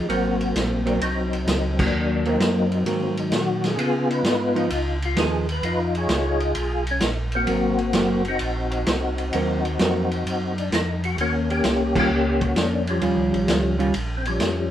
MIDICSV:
0, 0, Header, 1, 5, 480
1, 0, Start_track
1, 0, Tempo, 461894
1, 92, Time_signature, 4, 2, 24, 8
1, 15285, End_track
2, 0, Start_track
2, 0, Title_t, "Tonewheel organ"
2, 0, Program_c, 0, 16
2, 96, Note_on_c, 0, 58, 68
2, 103, Note_on_c, 0, 66, 91
2, 106, Note_on_c, 0, 60, 64
2, 543, Note_off_c, 0, 66, 0
2, 923, Note_on_c, 0, 62, 72
2, 986, Note_off_c, 0, 62, 0
2, 1011, Note_off_c, 0, 58, 0
2, 1016, Note_off_c, 0, 60, 0
2, 1062, Note_on_c, 0, 60, 57
2, 1065, Note_on_c, 0, 54, 55
2, 1065, Note_on_c, 0, 63, 82
2, 1824, Note_off_c, 0, 63, 0
2, 1861, Note_off_c, 0, 54, 0
2, 1870, Note_on_c, 0, 58, 61
2, 1873, Note_on_c, 0, 54, 65
2, 1881, Note_on_c, 0, 62, 89
2, 1974, Note_off_c, 0, 60, 0
2, 2343, Note_off_c, 0, 54, 0
2, 2356, Note_on_c, 0, 54, 63
2, 2357, Note_on_c, 0, 60, 66
2, 2363, Note_off_c, 0, 62, 0
2, 2372, Note_on_c, 0, 63, 93
2, 2782, Note_off_c, 0, 58, 0
2, 2840, Note_off_c, 0, 63, 0
2, 2853, Note_on_c, 0, 63, 84
2, 2961, Note_off_c, 0, 54, 0
2, 2968, Note_on_c, 0, 51, 60
2, 2973, Note_on_c, 0, 54, 60
2, 2977, Note_off_c, 0, 63, 0
2, 2978, Note_off_c, 0, 60, 0
2, 2991, Note_on_c, 0, 60, 82
2, 3318, Note_off_c, 0, 60, 0
2, 3322, Note_on_c, 0, 63, 80
2, 3465, Note_off_c, 0, 63, 0
2, 3479, Note_on_c, 0, 66, 96
2, 3802, Note_off_c, 0, 66, 0
2, 3812, Note_on_c, 0, 68, 92
2, 3887, Note_off_c, 0, 51, 0
2, 3890, Note_off_c, 0, 54, 0
2, 3938, Note_on_c, 0, 59, 69
2, 3939, Note_off_c, 0, 68, 0
2, 3941, Note_on_c, 0, 65, 70
2, 3951, Note_on_c, 0, 68, 100
2, 4247, Note_off_c, 0, 65, 0
2, 4247, Note_off_c, 0, 68, 0
2, 4260, Note_on_c, 0, 63, 68
2, 4260, Note_on_c, 0, 65, 72
2, 4274, Note_on_c, 0, 71, 94
2, 4713, Note_off_c, 0, 71, 0
2, 4853, Note_off_c, 0, 59, 0
2, 5178, Note_off_c, 0, 63, 0
2, 5178, Note_off_c, 0, 65, 0
2, 5251, Note_on_c, 0, 65, 75
2, 5391, Note_off_c, 0, 65, 0
2, 5403, Note_on_c, 0, 68, 87
2, 5694, Note_off_c, 0, 68, 0
2, 5737, Note_on_c, 0, 71, 90
2, 5865, Note_on_c, 0, 65, 70
2, 5871, Note_off_c, 0, 71, 0
2, 5874, Note_on_c, 0, 63, 73
2, 5883, Note_on_c, 0, 71, 104
2, 6024, Note_off_c, 0, 71, 0
2, 6192, Note_off_c, 0, 65, 0
2, 6204, Note_on_c, 0, 65, 73
2, 6204, Note_on_c, 0, 68, 70
2, 6214, Note_on_c, 0, 73, 97
2, 6645, Note_off_c, 0, 73, 0
2, 6782, Note_off_c, 0, 63, 0
2, 7112, Note_off_c, 0, 65, 0
2, 7112, Note_off_c, 0, 68, 0
2, 7181, Note_on_c, 0, 61, 71
2, 7309, Note_on_c, 0, 63, 85
2, 7316, Note_off_c, 0, 61, 0
2, 7454, Note_off_c, 0, 63, 0
2, 7638, Note_on_c, 0, 60, 67
2, 7639, Note_on_c, 0, 58, 68
2, 7652, Note_on_c, 0, 66, 94
2, 8270, Note_off_c, 0, 66, 0
2, 8282, Note_on_c, 0, 66, 91
2, 8549, Note_off_c, 0, 58, 0
2, 8549, Note_off_c, 0, 60, 0
2, 8595, Note_off_c, 0, 66, 0
2, 8607, Note_on_c, 0, 66, 61
2, 8608, Note_on_c, 0, 60, 59
2, 8614, Note_on_c, 0, 63, 87
2, 10952, Note_off_c, 0, 60, 0
2, 10952, Note_off_c, 0, 66, 0
2, 11000, Note_on_c, 0, 62, 82
2, 11069, Note_off_c, 0, 63, 0
2, 11146, Note_off_c, 0, 62, 0
2, 11164, Note_on_c, 0, 63, 93
2, 11454, Note_off_c, 0, 63, 0
2, 11484, Note_on_c, 0, 66, 93
2, 11613, Note_off_c, 0, 66, 0
2, 11646, Note_on_c, 0, 61, 75
2, 11648, Note_on_c, 0, 58, 73
2, 11651, Note_on_c, 0, 66, 99
2, 11790, Note_off_c, 0, 66, 0
2, 11951, Note_off_c, 0, 58, 0
2, 11954, Note_off_c, 0, 61, 0
2, 11960, Note_on_c, 0, 67, 106
2, 11963, Note_on_c, 0, 58, 80
2, 11966, Note_on_c, 0, 61, 78
2, 12443, Note_off_c, 0, 67, 0
2, 12449, Note_off_c, 0, 58, 0
2, 12452, Note_off_c, 0, 61, 0
2, 12461, Note_on_c, 0, 58, 75
2, 12463, Note_on_c, 0, 67, 121
2, 12465, Note_on_c, 0, 61, 70
2, 12889, Note_off_c, 0, 67, 0
2, 12915, Note_on_c, 0, 66, 88
2, 13059, Note_on_c, 0, 62, 90
2, 13062, Note_off_c, 0, 66, 0
2, 13358, Note_off_c, 0, 58, 0
2, 13359, Note_off_c, 0, 61, 0
2, 13393, Note_off_c, 0, 62, 0
2, 13397, Note_on_c, 0, 61, 80
2, 13404, Note_on_c, 0, 53, 60
2, 13404, Note_on_c, 0, 55, 62
2, 14305, Note_off_c, 0, 61, 0
2, 14309, Note_off_c, 0, 53, 0
2, 14309, Note_off_c, 0, 55, 0
2, 14727, Note_on_c, 0, 60, 62
2, 14822, Note_off_c, 0, 60, 0
2, 14827, Note_on_c, 0, 61, 81
2, 14836, Note_on_c, 0, 53, 55
2, 14840, Note_on_c, 0, 55, 60
2, 15285, Note_off_c, 0, 53, 0
2, 15285, Note_off_c, 0, 55, 0
2, 15285, Note_off_c, 0, 61, 0
2, 15285, End_track
3, 0, Start_track
3, 0, Title_t, "Hollow-body jazz guitar"
3, 0, Program_c, 1, 26
3, 91, Note_on_c, 1, 54, 55
3, 100, Note_on_c, 1, 58, 59
3, 105, Note_on_c, 1, 60, 65
3, 833, Note_off_c, 1, 54, 0
3, 838, Note_off_c, 1, 58, 0
3, 840, Note_off_c, 1, 60, 0
3, 891, Note_on_c, 1, 54, 58
3, 896, Note_on_c, 1, 58, 63
3, 897, Note_on_c, 1, 60, 74
3, 1031, Note_off_c, 1, 54, 0
3, 1033, Note_off_c, 1, 58, 0
3, 1034, Note_off_c, 1, 60, 0
3, 2349, Note_on_c, 1, 54, 58
3, 2354, Note_on_c, 1, 58, 67
3, 2367, Note_on_c, 1, 60, 72
3, 2944, Note_off_c, 1, 54, 0
3, 2947, Note_off_c, 1, 58, 0
3, 2953, Note_off_c, 1, 60, 0
3, 2977, Note_on_c, 1, 54, 60
3, 2981, Note_on_c, 1, 58, 62
3, 2987, Note_on_c, 1, 60, 62
3, 3269, Note_off_c, 1, 54, 0
3, 3271, Note_off_c, 1, 58, 0
3, 3274, Note_off_c, 1, 60, 0
3, 4736, Note_on_c, 1, 53, 74
3, 4736, Note_on_c, 1, 59, 71
3, 4741, Note_on_c, 1, 63, 81
3, 4874, Note_off_c, 1, 53, 0
3, 4874, Note_off_c, 1, 59, 0
3, 4876, Note_off_c, 1, 63, 0
3, 5367, Note_on_c, 1, 53, 65
3, 5373, Note_on_c, 1, 59, 73
3, 5381, Note_on_c, 1, 63, 76
3, 5665, Note_off_c, 1, 53, 0
3, 5668, Note_off_c, 1, 59, 0
3, 5672, Note_off_c, 1, 63, 0
3, 7760, Note_on_c, 1, 54, 53
3, 7772, Note_on_c, 1, 58, 60
3, 7778, Note_on_c, 1, 60, 67
3, 8063, Note_off_c, 1, 54, 0
3, 8068, Note_off_c, 1, 58, 0
3, 8071, Note_off_c, 1, 60, 0
3, 8252, Note_on_c, 1, 54, 68
3, 8259, Note_on_c, 1, 58, 69
3, 8265, Note_on_c, 1, 60, 69
3, 8549, Note_off_c, 1, 54, 0
3, 8552, Note_off_c, 1, 58, 0
3, 8555, Note_off_c, 1, 60, 0
3, 9712, Note_on_c, 1, 54, 59
3, 9717, Note_on_c, 1, 58, 57
3, 9722, Note_on_c, 1, 60, 62
3, 9998, Note_off_c, 1, 54, 0
3, 10001, Note_off_c, 1, 58, 0
3, 10004, Note_off_c, 1, 60, 0
3, 10174, Note_on_c, 1, 54, 61
3, 10191, Note_on_c, 1, 58, 69
3, 10193, Note_on_c, 1, 60, 68
3, 10469, Note_off_c, 1, 54, 0
3, 10478, Note_off_c, 1, 58, 0
3, 10478, Note_off_c, 1, 60, 0
3, 12427, Note_on_c, 1, 51, 66
3, 12428, Note_on_c, 1, 55, 63
3, 12440, Note_on_c, 1, 61, 64
3, 12442, Note_on_c, 1, 65, 73
3, 12559, Note_off_c, 1, 51, 0
3, 12560, Note_off_c, 1, 55, 0
3, 12566, Note_off_c, 1, 61, 0
3, 12567, Note_off_c, 1, 65, 0
3, 13523, Note_on_c, 1, 55, 56
3, 13524, Note_on_c, 1, 51, 55
3, 13529, Note_on_c, 1, 61, 60
3, 13535, Note_on_c, 1, 65, 64
3, 14269, Note_off_c, 1, 51, 0
3, 14269, Note_off_c, 1, 55, 0
3, 14272, Note_off_c, 1, 61, 0
3, 14275, Note_off_c, 1, 65, 0
3, 14325, Note_on_c, 1, 51, 63
3, 14331, Note_on_c, 1, 61, 66
3, 14336, Note_on_c, 1, 55, 73
3, 14337, Note_on_c, 1, 65, 68
3, 14468, Note_off_c, 1, 51, 0
3, 14471, Note_off_c, 1, 61, 0
3, 14473, Note_off_c, 1, 55, 0
3, 14473, Note_off_c, 1, 65, 0
3, 15285, End_track
4, 0, Start_track
4, 0, Title_t, "Tonewheel organ"
4, 0, Program_c, 2, 16
4, 88, Note_on_c, 2, 32, 86
4, 554, Note_off_c, 2, 32, 0
4, 569, Note_on_c, 2, 34, 83
4, 1035, Note_off_c, 2, 34, 0
4, 1050, Note_on_c, 2, 36, 81
4, 1515, Note_off_c, 2, 36, 0
4, 1520, Note_on_c, 2, 37, 86
4, 1989, Note_off_c, 2, 37, 0
4, 2006, Note_on_c, 2, 39, 88
4, 2473, Note_off_c, 2, 39, 0
4, 2483, Note_on_c, 2, 42, 80
4, 2951, Note_off_c, 2, 42, 0
4, 2971, Note_on_c, 2, 44, 76
4, 3436, Note_off_c, 2, 44, 0
4, 3445, Note_on_c, 2, 46, 81
4, 3913, Note_off_c, 2, 46, 0
4, 3920, Note_on_c, 2, 49, 87
4, 4391, Note_off_c, 2, 49, 0
4, 4404, Note_on_c, 2, 44, 81
4, 4873, Note_off_c, 2, 44, 0
4, 4893, Note_on_c, 2, 37, 81
4, 5358, Note_off_c, 2, 37, 0
4, 5368, Note_on_c, 2, 39, 90
4, 5836, Note_off_c, 2, 39, 0
4, 5848, Note_on_c, 2, 41, 84
4, 6316, Note_off_c, 2, 41, 0
4, 6320, Note_on_c, 2, 37, 82
4, 6792, Note_off_c, 2, 37, 0
4, 6809, Note_on_c, 2, 35, 82
4, 7277, Note_off_c, 2, 35, 0
4, 7289, Note_on_c, 2, 34, 92
4, 7757, Note_off_c, 2, 34, 0
4, 7769, Note_on_c, 2, 32, 90
4, 8237, Note_off_c, 2, 32, 0
4, 8253, Note_on_c, 2, 30, 89
4, 8719, Note_off_c, 2, 30, 0
4, 8731, Note_on_c, 2, 34, 82
4, 9198, Note_off_c, 2, 34, 0
4, 9216, Note_on_c, 2, 36, 90
4, 9680, Note_off_c, 2, 36, 0
4, 9706, Note_on_c, 2, 39, 87
4, 10165, Note_off_c, 2, 39, 0
4, 10182, Note_on_c, 2, 41, 90
4, 10643, Note_off_c, 2, 41, 0
4, 10659, Note_on_c, 2, 42, 75
4, 11121, Note_off_c, 2, 42, 0
4, 11136, Note_on_c, 2, 41, 89
4, 11599, Note_off_c, 2, 41, 0
4, 11611, Note_on_c, 2, 39, 91
4, 12076, Note_off_c, 2, 39, 0
4, 12091, Note_on_c, 2, 36, 83
4, 12556, Note_off_c, 2, 36, 0
4, 12571, Note_on_c, 2, 37, 83
4, 13036, Note_off_c, 2, 37, 0
4, 13044, Note_on_c, 2, 41, 84
4, 13512, Note_off_c, 2, 41, 0
4, 13530, Note_on_c, 2, 39, 82
4, 13685, Note_off_c, 2, 39, 0
4, 13687, Note_on_c, 2, 37, 58
4, 13846, Note_on_c, 2, 34, 65
4, 13848, Note_off_c, 2, 37, 0
4, 13996, Note_off_c, 2, 34, 0
4, 14008, Note_on_c, 2, 37, 79
4, 14474, Note_off_c, 2, 37, 0
4, 14495, Note_on_c, 2, 34, 82
4, 14957, Note_off_c, 2, 34, 0
4, 14969, Note_on_c, 2, 41, 88
4, 15285, Note_off_c, 2, 41, 0
4, 15285, End_track
5, 0, Start_track
5, 0, Title_t, "Drums"
5, 99, Note_on_c, 9, 51, 60
5, 203, Note_off_c, 9, 51, 0
5, 422, Note_on_c, 9, 51, 45
5, 526, Note_off_c, 9, 51, 0
5, 578, Note_on_c, 9, 44, 63
5, 578, Note_on_c, 9, 51, 67
5, 580, Note_on_c, 9, 38, 64
5, 682, Note_off_c, 9, 44, 0
5, 682, Note_off_c, 9, 51, 0
5, 684, Note_off_c, 9, 38, 0
5, 900, Note_on_c, 9, 51, 46
5, 1003, Note_off_c, 9, 51, 0
5, 1054, Note_on_c, 9, 51, 68
5, 1157, Note_off_c, 9, 51, 0
5, 1381, Note_on_c, 9, 51, 48
5, 1485, Note_off_c, 9, 51, 0
5, 1532, Note_on_c, 9, 44, 57
5, 1532, Note_on_c, 9, 51, 72
5, 1534, Note_on_c, 9, 38, 68
5, 1636, Note_off_c, 9, 44, 0
5, 1636, Note_off_c, 9, 51, 0
5, 1638, Note_off_c, 9, 38, 0
5, 1861, Note_on_c, 9, 36, 89
5, 1862, Note_on_c, 9, 49, 83
5, 1965, Note_off_c, 9, 36, 0
5, 1966, Note_off_c, 9, 49, 0
5, 2342, Note_on_c, 9, 51, 43
5, 2446, Note_off_c, 9, 51, 0
5, 2497, Note_on_c, 9, 44, 52
5, 2497, Note_on_c, 9, 51, 61
5, 2499, Note_on_c, 9, 38, 67
5, 2601, Note_off_c, 9, 44, 0
5, 2601, Note_off_c, 9, 51, 0
5, 2603, Note_off_c, 9, 38, 0
5, 2823, Note_on_c, 9, 51, 44
5, 2926, Note_off_c, 9, 51, 0
5, 2973, Note_on_c, 9, 51, 65
5, 3077, Note_off_c, 9, 51, 0
5, 3297, Note_on_c, 9, 51, 49
5, 3401, Note_off_c, 9, 51, 0
5, 3446, Note_on_c, 9, 44, 56
5, 3446, Note_on_c, 9, 51, 66
5, 3448, Note_on_c, 9, 38, 67
5, 3550, Note_off_c, 9, 44, 0
5, 3550, Note_off_c, 9, 51, 0
5, 3552, Note_off_c, 9, 38, 0
5, 3780, Note_on_c, 9, 51, 50
5, 3782, Note_on_c, 9, 38, 37
5, 3883, Note_off_c, 9, 51, 0
5, 3886, Note_off_c, 9, 38, 0
5, 3934, Note_on_c, 9, 51, 67
5, 4038, Note_off_c, 9, 51, 0
5, 4266, Note_on_c, 9, 51, 46
5, 4370, Note_off_c, 9, 51, 0
5, 4411, Note_on_c, 9, 44, 49
5, 4411, Note_on_c, 9, 51, 68
5, 4413, Note_on_c, 9, 38, 65
5, 4515, Note_off_c, 9, 44, 0
5, 4515, Note_off_c, 9, 51, 0
5, 4517, Note_off_c, 9, 38, 0
5, 4740, Note_on_c, 9, 51, 44
5, 4844, Note_off_c, 9, 51, 0
5, 4888, Note_on_c, 9, 51, 73
5, 4992, Note_off_c, 9, 51, 0
5, 5220, Note_on_c, 9, 51, 52
5, 5324, Note_off_c, 9, 51, 0
5, 5368, Note_on_c, 9, 44, 51
5, 5368, Note_on_c, 9, 51, 71
5, 5370, Note_on_c, 9, 38, 68
5, 5471, Note_off_c, 9, 44, 0
5, 5471, Note_off_c, 9, 51, 0
5, 5474, Note_off_c, 9, 38, 0
5, 5702, Note_on_c, 9, 51, 52
5, 5806, Note_off_c, 9, 51, 0
5, 5852, Note_on_c, 9, 51, 62
5, 5956, Note_off_c, 9, 51, 0
5, 6180, Note_on_c, 9, 51, 45
5, 6284, Note_off_c, 9, 51, 0
5, 6327, Note_on_c, 9, 44, 58
5, 6327, Note_on_c, 9, 51, 66
5, 6329, Note_on_c, 9, 38, 65
5, 6430, Note_off_c, 9, 44, 0
5, 6430, Note_off_c, 9, 51, 0
5, 6433, Note_off_c, 9, 38, 0
5, 6654, Note_on_c, 9, 51, 45
5, 6758, Note_off_c, 9, 51, 0
5, 6804, Note_on_c, 9, 51, 70
5, 6908, Note_off_c, 9, 51, 0
5, 7135, Note_on_c, 9, 51, 53
5, 7239, Note_off_c, 9, 51, 0
5, 7279, Note_on_c, 9, 44, 64
5, 7279, Note_on_c, 9, 51, 70
5, 7281, Note_on_c, 9, 38, 70
5, 7383, Note_off_c, 9, 44, 0
5, 7383, Note_off_c, 9, 51, 0
5, 7385, Note_off_c, 9, 38, 0
5, 7605, Note_on_c, 9, 51, 47
5, 7708, Note_off_c, 9, 51, 0
5, 7762, Note_on_c, 9, 51, 61
5, 7865, Note_off_c, 9, 51, 0
5, 8090, Note_on_c, 9, 51, 42
5, 8194, Note_off_c, 9, 51, 0
5, 8241, Note_on_c, 9, 44, 49
5, 8241, Note_on_c, 9, 51, 73
5, 8243, Note_on_c, 9, 38, 66
5, 8345, Note_off_c, 9, 44, 0
5, 8345, Note_off_c, 9, 51, 0
5, 8347, Note_off_c, 9, 38, 0
5, 8570, Note_on_c, 9, 51, 46
5, 8674, Note_off_c, 9, 51, 0
5, 8719, Note_on_c, 9, 51, 66
5, 8823, Note_off_c, 9, 51, 0
5, 9056, Note_on_c, 9, 51, 50
5, 9160, Note_off_c, 9, 51, 0
5, 9212, Note_on_c, 9, 44, 60
5, 9212, Note_on_c, 9, 51, 77
5, 9214, Note_on_c, 9, 38, 71
5, 9316, Note_off_c, 9, 44, 0
5, 9316, Note_off_c, 9, 51, 0
5, 9318, Note_off_c, 9, 38, 0
5, 9540, Note_on_c, 9, 51, 50
5, 9644, Note_off_c, 9, 51, 0
5, 9692, Note_on_c, 9, 51, 66
5, 9796, Note_off_c, 9, 51, 0
5, 10027, Note_on_c, 9, 51, 44
5, 10131, Note_off_c, 9, 51, 0
5, 10176, Note_on_c, 9, 44, 54
5, 10176, Note_on_c, 9, 51, 66
5, 10178, Note_on_c, 9, 38, 68
5, 10280, Note_off_c, 9, 44, 0
5, 10280, Note_off_c, 9, 51, 0
5, 10282, Note_off_c, 9, 38, 0
5, 10511, Note_on_c, 9, 51, 46
5, 10615, Note_off_c, 9, 51, 0
5, 10668, Note_on_c, 9, 51, 67
5, 10772, Note_off_c, 9, 51, 0
5, 10993, Note_on_c, 9, 51, 49
5, 11097, Note_off_c, 9, 51, 0
5, 11142, Note_on_c, 9, 44, 65
5, 11142, Note_on_c, 9, 51, 65
5, 11144, Note_on_c, 9, 38, 71
5, 11246, Note_off_c, 9, 44, 0
5, 11246, Note_off_c, 9, 51, 0
5, 11248, Note_off_c, 9, 38, 0
5, 11468, Note_on_c, 9, 51, 51
5, 11572, Note_off_c, 9, 51, 0
5, 11619, Note_on_c, 9, 51, 63
5, 11723, Note_off_c, 9, 51, 0
5, 11952, Note_on_c, 9, 51, 47
5, 12056, Note_off_c, 9, 51, 0
5, 12093, Note_on_c, 9, 44, 59
5, 12093, Note_on_c, 9, 51, 68
5, 12095, Note_on_c, 9, 38, 69
5, 12197, Note_off_c, 9, 44, 0
5, 12197, Note_off_c, 9, 51, 0
5, 12199, Note_off_c, 9, 38, 0
5, 12424, Note_on_c, 9, 36, 81
5, 12427, Note_on_c, 9, 49, 78
5, 12528, Note_off_c, 9, 36, 0
5, 12530, Note_off_c, 9, 49, 0
5, 12898, Note_on_c, 9, 51, 50
5, 12900, Note_on_c, 9, 36, 67
5, 13002, Note_off_c, 9, 51, 0
5, 13004, Note_off_c, 9, 36, 0
5, 13052, Note_on_c, 9, 44, 52
5, 13052, Note_on_c, 9, 51, 70
5, 13055, Note_on_c, 9, 38, 72
5, 13156, Note_off_c, 9, 44, 0
5, 13156, Note_off_c, 9, 51, 0
5, 13158, Note_off_c, 9, 38, 0
5, 13377, Note_on_c, 9, 51, 52
5, 13481, Note_off_c, 9, 51, 0
5, 13524, Note_on_c, 9, 51, 60
5, 13628, Note_off_c, 9, 51, 0
5, 13861, Note_on_c, 9, 51, 43
5, 13965, Note_off_c, 9, 51, 0
5, 14009, Note_on_c, 9, 44, 59
5, 14009, Note_on_c, 9, 51, 73
5, 14011, Note_on_c, 9, 38, 70
5, 14113, Note_off_c, 9, 44, 0
5, 14113, Note_off_c, 9, 51, 0
5, 14115, Note_off_c, 9, 38, 0
5, 14339, Note_on_c, 9, 51, 47
5, 14443, Note_off_c, 9, 51, 0
5, 14484, Note_on_c, 9, 51, 73
5, 14588, Note_off_c, 9, 51, 0
5, 14813, Note_on_c, 9, 51, 49
5, 14917, Note_off_c, 9, 51, 0
5, 14962, Note_on_c, 9, 44, 60
5, 14962, Note_on_c, 9, 51, 72
5, 14964, Note_on_c, 9, 38, 72
5, 15066, Note_off_c, 9, 44, 0
5, 15066, Note_off_c, 9, 51, 0
5, 15068, Note_off_c, 9, 38, 0
5, 15285, End_track
0, 0, End_of_file